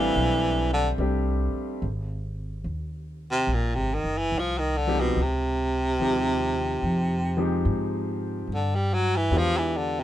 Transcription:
Already playing: upright bass A1, baritone saxophone E3, grand piano G3 A3 C4 D4 F5
0.16 upright bass B1
0.73 baritone saxophone D3
0.98 upright bass C2, grand piano G3 A3 C4 D4 G4
1.53 muted upright bass stroke
1.82 upright bass G#1
2.64 upright bass D#2
3.31 baritone saxophone C3
3.47 upright bass A#1
3.54 baritone saxophone A#2
3.75 upright bass G#1, baritone saxophone C3
3.94 baritone saxophone D#3
4.04 upright bass F#1
4.18 baritone saxophone E3
4.32 upright bass C2
4.39 baritone saxophone F3
4.58 baritone saxophone D#3
4.77 baritone saxophone D3
4.87 grand piano F3 G#3 C4 D#4 G4
5.01 baritone saxophone B2
5.16 upright bass C#2
5.22 baritone saxophone C3
6.00 upright bass D#2, grand piano F3 G#3 C4 D#4 G4
6.82 upright bass F2
7.37 grand piano F3 G#3 C4 D#4 G4
7.65 upright bass G#2
8.47 upright bass G2
8.55 baritone saxophone D3
8.75 baritone saxophone G3
8.93 baritone saxophone F#3
9.16 baritone saxophone E3
9.30 upright bass E2, grand piano G#3 B3 D4 F4 G4
9.38 baritone saxophone F3
9.58 baritone saxophone E3
9.77 baritone saxophone D3
10.00 baritone saxophone C3

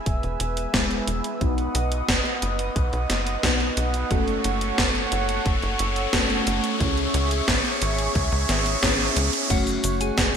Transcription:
Already playing: fm electric piano G#3 B3 E4 G#4, analog synth pad B4 E5 G#5 E6, riser
0.06 analog synth bass E1, kick, closed hi-hat
0.23 analog synth bass E1, closed hi-hat
0.40 analog synth bass E1, closed hi-hat
0.57 closed hi-hat
0.74 analog synth bass E1, fm electric piano G#3 B3 E4 G#4, kick, snare, closed hi-hat
0.91 closed hi-hat
1.07 analog synth bass E1, closed hi-hat
1.24 closed hi-hat
1.41 analog synth bass B1, fm electric piano B3 D#4 F#4 B4, analog synth pad D#5 F#5 D#6, kick, closed hi-hat
1.58 closed hi-hat
1.75 analog synth bass B1, closed hi-hat
1.92 closed hi-hat
2.08 analog synth bass F#1, kick, snare, closed hi-hat
2.25 closed hi-hat
2.42 analog synth bass F#1, closed hi-hat
2.59 closed hi-hat
2.76 analog synth bass B1, kick, closed hi-hat
2.93 analog synth bass B1, closed hi-hat
3.10 analog synth bass F#1, snare, closed hi-hat
3.27 closed hi-hat
3.43 analog synth bass B1, fm electric piano B3 D#4 F#4 B4, kick, snare, closed hi-hat
3.60 closed hi-hat
3.77 analog synth bass B1, closed hi-hat
3.94 closed hi-hat
4.11 analog synth bass F#1, fm electric piano A3 C#4 F#4 A4, analog synth pad A4 C#5 C#6, kick, closed hi-hat
4.28 closed hi-hat
4.44 analog synth bass F#1, closed hi-hat
4.61 closed hi-hat
4.78 analog synth bass F#1, kick, snare, closed hi-hat
4.95 closed hi-hat
5.12 analog synth bass F#1, closed hi-hat
5.29 closed hi-hat
5.46 analog synth bass F#1, kick, closed hi-hat
5.62 analog synth bass F#1, closed hi-hat
5.79 analog synth bass F#1, closed hi-hat
5.96 closed hi-hat
6.13 analog synth bass F#1, fm electric piano A3 C#4 F#4 A4, kick, snare, closed hi-hat
6.30 closed hi-hat
6.47 analog synth bass F#1, closed hi-hat
6.64 closed hi-hat
6.80 analog synth bass C#2, fm electric piano C#4 E4 G#4 C#5, analog synth pad G#4 C#5 E5 C#6, kick, closed hi-hat
6.97 closed hi-hat
7.14 analog synth bass C#2, closed hi-hat
7.31 closed hi-hat
7.48 analog synth bass G#1, kick, snare, closed hi-hat
7.65 closed hi-hat
7.82 analog synth bass G#1, closed hi-hat
7.99 closed hi-hat
8.15 analog synth bass C#2, kick, closed hi-hat
8.32 analog synth bass C#2, closed hi-hat
8.49 analog synth bass G#1, snare, closed hi-hat
8.66 closed hi-hat
8.83 analog synth bass G#1, fm electric piano C#4 E4 G#4 C#5, kick, snare, closed hi-hat
9.00 closed hi-hat
9.16 analog synth bass C#2, closed hi-hat
9.33 closed hi-hat
9.50 analog synth bass F#1, analog synth pad A3 C#5 F#5 C#6, fm electric piano A3 C#4 F#4 C#5, soft synth lead F#4, synth bell F#5, kick, closed hi-hat, crash, shaker
9.67 closed hi-hat, shaker
9.84 analog synth bass F#1, closed hi-hat, shaker
10.01 soft synth lead G#4, synth bell G#5, closed hi-hat, shaker
10.18 analog synth bass F#1, kick, snare, closed hi-hat, shaker

